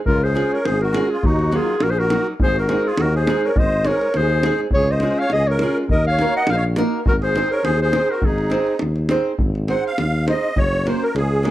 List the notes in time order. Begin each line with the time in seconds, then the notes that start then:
0.06 C#2 F4 A#4, davul low
0.23 G#4 C5
0.34 G#3 C#4 F4 G#4, davul high
0.53 A#4 C#5
0.64 G#1 G#4 C5, davul high
0.81 F#4 A#4
0.93 G#3 C#4 F4 G#4, davul high
1.10 F4 G#4
1.23 D#2 D#4 F#4, davul low
1.39 davul high
1.52 F#3 A#3 D#4 F4 F#4, davul high
1.56 G#4
1.80 A#1 F#4 A#4, davul high
1.90 G#4 C5
1.98 F#4 A#4
2.10 F#3 A#3 D#4 F#4, davul high
2.40 G#1 G#4 C5, davul low
2.56 F#4 A#4, davul high
2.69 G#3 C4 D#4 G#4, davul high
2.86 F4 G#4
2.98 D#2 F#4 A#4, davul high
3.15 G#4 C5
3.27 G#3 C4 D#4 G#4, davul high
3.44 A#4 C#5
3.56 G#1 C5 D#5, davul low
3.72 davul high
3.85 G#3 C4 D#4 G#4 A#4 C#5, davul high
4.01 davul high
4.14 D#2 G#4 C5, davul high
4.30 davul high
4.43 G#3 C4 D#4 G#4, davul high
4.59 davul high
4.71 C#2 C#5, davul low
4.75 G#4
4.88 C5 D#5, davul high
5.00 G#3 C#4 F4, davul high
5.04 G#4
5.19 C#5 F5
5.30 C#2 G#4 D#5, davul high
5.48 A#4 C#5
5.59 G#3 C#4, davul high
5.63 F4 G#4
5.89 D#2 A#4 D#5, davul low
6.05 C#5 F5, davul high
6.19 A#3 D#4 F#4 A#4, davul high
6.36 D#5 F#5
6.47 A#1 A#4 F5, davul high
6.52 C5 D#5
6.56 C#5 F5
6.76 A#3 D#4 F#4 A#4, davul high
7.06 G#1 F#4 A#4, davul low
7.21 G#4 C5, davul high
7.35 C4 D#4 G#4 C5, davul high
7.51 A#4 C#5
7.63 D#2 G#4 C5, davul high
7.82 G#4 C5
7.93 C4 D#4 G#4 C5, davul high
8.11 F#4 A#4
8.22 G#1 D#4 G#4, davul low
8.38 davul high
8.50 C4 D#4 G#4 C5, davul high
8.67 davul high
8.79 D#2, davul high
8.96 davul high
9.09 C4 D#4 G#4 C5, davul high
9.39 G#1, davul low
9.55 davul high
9.68 C4 D#4 G#4 C5 F#5, davul high
9.87 F5
9.98 D#2, davul high
10.26 C4 D#4 G#4 C5 D#5, davul high
10.44 davul high
10.56 F#1 C#5, davul low
10.73 davul high
10.85 A#3 C#4 F#4 A#4 C5, davul high
11.03 A#4
11.14 C#2 G#4, davul high
11.43 A#3 C#4 F#4 A#4, davul high